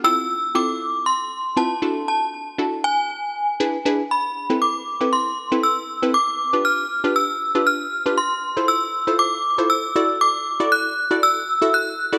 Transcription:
X:1
M:4/4
L:1/16
Q:1/4=118
K:Am
V:1 name="Synth bell"
e'4 d'4 c'4 a4 | a4 z2 ^g8 z2 | b4 d'4 c'4 e'4 | d'4 f'4 e'4 f'4 |
c'4 e'4 d'4 e'4 | d'4 ^f'4 e'4 f'4 |]
V:2 name="Synth stab"
[CEFA]3 z [CEFA]4- [CEFA] z3 [CEFB] z [DE^FA]2- | [DE^FA]3 z [DEFA]4 z4 [DE^GB] z [DEGB] z | z3 [CEAB]3 z [CEAB]3 z [CEAB]3 z [CEAB] | z3 [DFGB]3 z [DFGB]3 z [DFGB]3 z [DFGB] |
z3 [EFAc]3 z [EFAc]3 z [EFAc]3 [E^FAd]2- | [E^FAd]2 z [EFAd]3 z [EFAd]3 z [EFAe]3 z [EFAd] |]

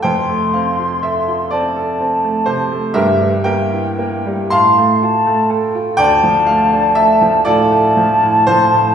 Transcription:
X:1
M:6/8
L:1/16
Q:3/8=40
K:F
V:1 name="Flute"
c'6 a4 z2 | g6 f2 a2 g2 | [K:Dm] a6 a6 |]
V:2 name="Grand piano"
[cg]2 f2 e2 d4 c2 | [GBe]2 [Beg]4 [fac']6 | [K:Dm] [dg]2 f2 e2 [FAd]4 c2 |]
V:3 name="Grand piano"
[F,,,F,,] A, C F A F C A C A, C, A, | [G,,,G,,] G, B, E B, G, A,, A, F A, A F | [K:Dm] D,, F, A, D A, F, A,, A, F, A,, F, A,, |]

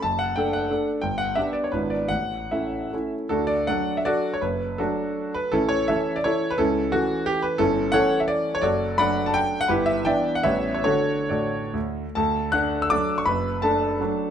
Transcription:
X:1
M:3/4
L:1/16
Q:1/4=166
K:D
V:1 name="Grand piano"
a2 f2 g2 f4 z2 | g2 f2 e2 d c B2 d2 | f4 e6 z2 | [DFA]2 d2 [Adf]3 e [FAd]3 c |
B4 [DFA]6 B2 | [CEA]2 c2 [Ace]3 d [EAc]3 B | [CEA]4 F4 G2 B2 | [CEA]4 [Acf]3 e d3 c |
[FAd]4 [dfb]3 a g3 f | [EGB]2 e2 [deg]3 f [Bce]3 c | [FAc]4 [FAd]4 z4 | [Aa]4 [ff']3 e' [dd']3 c' |
[Bb]4 [Aa]8 |]
V:2 name="Grand piano"
F,,,4 [A,DA]4 [A,DA]4 | G,,,4 [B,DG]4 [^G,,,B,DE]4 | A,,,4 [A,CE]4 [A,CE]4 | D,,4 [F,A,D]8 |
F,,,4 [F,A,]8 | A,,,4 [E,A,C]8 | C,,4 [E,A,C]8 | G,,,4 [E,A,C]8 |
F,,,4 [F,A,D]8 | G,,,4 [E,B,D]4 [A,,,G,B,C]4 | [D,A,D]4 A,,4 D,,4 | D,,4 [A,D]4 [F,A,D]4 |
F,,,4 [A,D]4 [F,A,D]4 |]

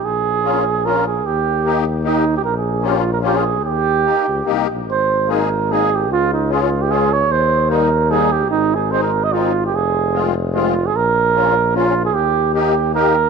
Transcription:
X:1
M:3/4
L:1/16
Q:"Swing" 1/4=148
K:Ebmix
V:1 name="Flugelhorn"
A8 B2 A2 | G4- G z3 E3 G | B A3 (3G2 F2 B2 G A3 | G8- G2 z2 |
c4 B4 A2 G2 | F2 E2 A F2 G A2 d2 | c4 B4 A2 G2 | E2 A2 c B2 e F3 G |
A4- A z3 F3 A | B8 F3 A | G4 G4 B4 |]
V:2 name="Accordion"
z4 [B,DF]2 z2 [B,DF]2 z2 | z4 [B,EG]2 z2 [B,EG]2 z2 | z4 [B,DF]2 z2 [B,DF]2 z2 | z4 [B,EG]2 z2 [B,EG]2 z2 |
z4 [B,EA]2 z2 [B,EA]2 z2 | z4 [A,DF]2 z2 [A,DF]2 z2 | z4 [G,B,E]2 z2 [G,B,E]2 z2 | z4 [A,CE]2 z2 [A,CE]2 z2 |
z4 [A,CF]2 z2 [A,CF]2 z2 | z4 [B,DF]2 z2 [B,DF]2 z2 | z4 [B,EG]2 z2 [B,EG]2 z2 |]
V:3 name="Tuba" clef=bass
B,,,12 | E,,12 | B,,,12 | E,,6 D,,2 C,,2 B,,,2 |
A,,,12 | D,,12 | E,,12 | A,,,12 |
F,,,12 | B,,,12 | E,,12 |]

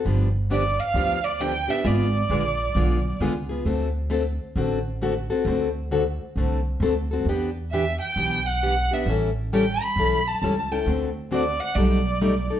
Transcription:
X:1
M:4/4
L:1/8
Q:"Swing" 1/4=133
K:Dmix
V:1 name="Violin"
z2 d =f2 d g e | d6 z2 | z8 | z8 |
z2 e g2 f2 e | z2 g b2 a2 g | z2 d f d3 z |]
V:2 name="Steel-string acoustic guitar"
[D,=F,B,DG] z [D,F,B,DG] z [D,F,B,DG] z [D,F,B,DG] [B,DG] | [D,^G,B,^E^G] z [D,G,B,EG] z [D,G,B,EG] z [D,G,B,EG] [B,EG] | [D,A,CFA] z [D,A,CFA] z [D,A,CFA] z [D,A,CFA] [CFA] | [D,A,CFA] z [D,A,CFA] z [D,A,CFA] z [D,A,CFA] [CFA] |
[E,B,DG] z [E,B,DG] z [E,B,DG] z [E,B,DG] [B,DG] | [E,G,^CEA] z [E,G,CEA] z [E,G,CEA] z [E,G,CEA] [CEA] | [D,A,CFA] z [D,A,CFA] z [B,,G,A,^DA] z [B,,G,A,DA] [A,DA] |]
V:3 name="Upright bass" clef=bass
G,,,4 D,,4 | ^G,,,2 _B,,,2 =B,,,2 ^C,,2 | D,,4 A,,,4 | D,,4 C,,2 D,,2 |
E,,4 B,,,4 | A,,,4 B,,,2 ^C,,2 | D,,4 B,,,4 |]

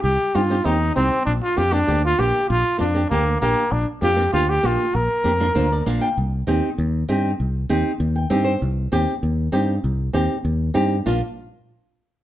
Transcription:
X:1
M:4/4
L:1/8
Q:1/4=196
K:Cdor
V:1 name="Trumpet"
G2 F2 E2 C2 | D F G D2 F G2 | F2 D2 B,2 B,2 | D z G2 F G F2 |
B6 z2 | z8 | z8 | z8 |
z8 | z8 |]
V:2 name="Nylon-string guitar"
z2 [CEG] [CEG] [CEG] z [CEG] z | z2 [B,DF] [B,DG] [B,DG] z [B,DG] z | z2 [B,DF] [B,DG] [B,DG] z [B,DG] z | z2 [B,DF] [B,DF] [B,DG] z [B,DG] z |
z2 [B,DG] [B,DFB] [B,DFc] d [B,DFf] g | z2 [CEG] z3 [CEG] z | z2 [CEG] z2 g [CEGe] c | z2 [CEG] z3 [CEG] z |
z2 [CEG] z3 [CEG] z | [B,DF] z6 z |]
V:3 name="Fingered electric bass" clef=bass
C,, z G,,2 E,,2 C,, z | B,,, z F,,2 D,,2 B,,, z | B,,, z F,,2 D,,2 B,,, z | B,,, z F,,2 D,,2 B,,, z |
B,,, z F,,2 D,,2 B,,, z | C,,2 E,, z E,,2 G,,2 | C,,2 E,, z E,,2 G,,2 | C,,2 E,, z E,,2 G,,2 |
C,,2 E,, z E,,2 G,,2 | B,,, z6 z |]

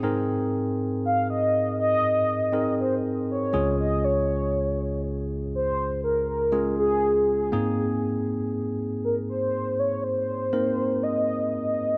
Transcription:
X:1
M:4/4
L:1/16
Q:1/4=60
K:Ab
V:1 name="Soft synth lead"
z4 f e2 e4 c2 d2 e | d4 z2 c2 B B2 A3 z2 | z4 B c2 d c4 e2 e2 |]
V:2 name="Tine electric piano"
[CEAB]8 z2 [CEAB]4 [A,DFA]2- | [A,DFA]6 z4 [A,DFA]4 [B,CEA]2- | [B,CEA]6 z4 [B,CEB]6 |]
V:3 name="Tine electric piano" clef=bass
A,,12- A,,2 [D,,D,]2- | [D,,D,]12- [D,,D,]2 A,,2- | A,,12- A,,2 z2 |]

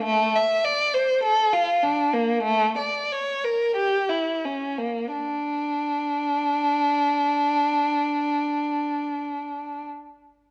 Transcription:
X:1
M:4/4
L:1/16
Q:1/4=45
K:Aphr
V:1 name="Violin"
A, e d c A F D B, A, d ^c B G E ^C B, | D16 |]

